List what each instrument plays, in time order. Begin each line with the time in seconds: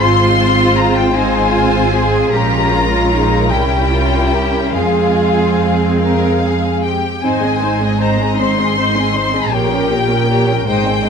0.00 double bass section G#1, viola section G#3 C4, violin section F4 C5 C6, cello section F4
0.77 violin section A#5
0.96 violin section G5
1.13 viola section G#3 C4, cello section D#4, violin section F4 C5 G#5
1.54 cello section F4
1.95 cello section G#4
2.32 double bass section A#1, viola section G#3 C#4, violin section F4 A#4 A#5, cello section G4
2.73 cello section F4
3.13 cello section D#4
3.52 double bass section C2, viola section G3 C#4, violin section E4 A#4 G5, cello section E4
3.92 cello section F4
4.34 cello section G4
4.74 double bass section F2, viola section G#3 C4, violin section F4 G#4 F5, cello section G#4
6.01 violin section A#4 F5
6.44 violin section G#4
6.84 violin section G4 G5
7.23 double bass section G#1, cello section G#2, viola section C4 D#4, violin section C5 G#5
7.43 viola section G#3 C4, violin section G#4 D#5
7.61 viola section C4 D#4, violin section C5
7.81 viola section G#3 C4, violin section G#4 D#5
7.99 viola section C4 D#4, violin section C5 A#5
8.19 viola section G#3 C4, violin section G#4 D#5
8.39 viola section C4 D#4, violin section C5 C6
8.58 viola section G#3 C4, violin section G#4 D#5
8.77 viola section C4 D#4, violin section C5
8.95 viola section G#3 C4, violin section G#4 D#5
9.14 viola section C4 D#4, violin section C5
9.33 viola section G#3 C4, violin section G#4 D#5
9.51 double bass section A#1, viola section A#3 G4, violin section C#5 G5
9.55 cello section A#2, violin section A#4
9.70 viola section C#4 A#4, violin section G4 A#4
9.90 viola section A#3 G4, violin section A#4 C#5
10.09 viola section C#4 A#4, violin section G4 A#4
10.29 viola section A#3 G4, violin section A#4 C#5
10.48 viola section C#4 A#4, violin section G4 A#4
10.67 double bass section G#1, cello section G#2, viola section G#3 D#4, violin section C5 D#5 G5
10.86 viola section C4, violin section G#4 C5
11.03 viola section G#3 D#4, violin section C5 D#5